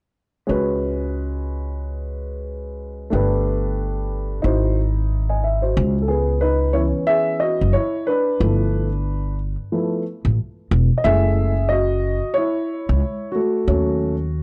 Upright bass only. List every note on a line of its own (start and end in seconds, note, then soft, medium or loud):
0.49 3.09 C#2 medium
3.13 4.41 G1 medium
4.44 5.72 G#1 medium
5.77 6.91 C#2 loud
7.61 7.73 F#1 medium
8.40 9.55 G1 medium
10.25 10.36 A1 medium
10.71 10.88 E1 medium
11.05 12.19 F#1 loud
12.89 13.00 C#2 medium
13.68 14.43 D#2 medium